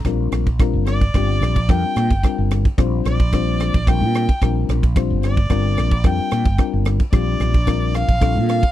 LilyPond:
<<
  \new Staff \with { instrumentName = "Violin" } { \time 4/4 \key bes \major \tempo 4 = 110 r4. d''4. g''4 | r4. d''4. g''4 | r4. d''4. g''4 | r4 d''4. f''4 f''8 | }
  \new Staff \with { instrumentName = "Reed electric piano" } { \time 4/4 \key bes \major <g c' d' f' bes'>8. r16 <g c' d' f' bes'>8. r16 <g c' d' f' g'>8. r16 <g c' d' f' bes'>8. r16 | <g c' d' f' bes'>8. r16 <g c' d' f' c''>8. r16 <g c' d' f' c''>8. r16 <g c' d' f' bes'>8. r16 | <g c' d' f' bes'>8. r16 <g c' d' f' c''>8. r16 <g c' d' f' bes'>8. r16 <g c' d' f' bes'>8. r16 | <g c' d' f' bes'>8. r16 <g c' d' f' g'>8. r16 <g c' d' f' bes'>8. r16 <g c' d' f' a'>8. r16 | }
  \new Staff \with { instrumentName = "Fretless electric bass" } { \clef bass \time 4/4 \key bes \major bes,,8 bes,,8. g,,8. g,,8 bes,,8 f,16 r16 bes,16 g,,16 | r16 g,,8 r16 bes,,8 bes,,4~ bes,,16 bes,,8 bes,8 r16 | bes,,8 bes,,8. g,,8. g,,8 bes,,8 f,16 r16 bes,16 g,,16 | r16 g,,8 r16 bes,,8 bes,,4~ bes,,16 bes,,8 bes,8 r16 | }
  \new DrumStaff \with { instrumentName = "Drums" } \drummode { \time 4/4 <bd cymr ss>8 <cymr ss>16 <bd cymr>16 <bd cymr ss>8 <cymr ss>16 <bd cymr>16 <bd cymr ss>8 <cymr ss>16 <bd cymr>16 <bd cymr ss>8 <cymr ss>16 <bd cymr>16 | <bd cymr ss>8 <cymr ss>16 <bd cymr>16 <bd cymr ss>8 <cymr ss>16 <bd cymr>16 <bd cymr ss>8 <cymr ss>16 <bd cymr>16 <bd cymr ss>8 <cymr ss>16 <bd cymr>16 | <bd cymr ss>8 <cymr ss>16 <bd cymr>16 <bd cymr ss>8 <cymr ss>16 <bd cymr>16 <bd cymr ss>8 <cymr ss>16 <bd cymr>16 <bd cymr ss>8 <cymr ss>16 <bd cymr>16 | <bd cymr ss>8 <cymr ss>16 <bd cymr>16 <bd cymr ss>8 <cymr ss>16 <bd cymr>16 <bd cymr ss>8 <cymr ss>16 <bd cymr>16 <bd cymr ss>8 <cymr ss>16 <bd cymr>16 | }
>>